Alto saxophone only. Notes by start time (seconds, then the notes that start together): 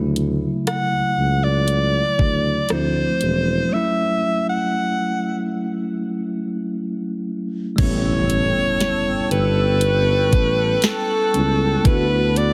0.67 F#5
1.44 D5
2.71 C5
3.73 E5
4.49 F#5
7.79 C#5
9.32 B4
10.84 A4
11.86 B4
12.37 D5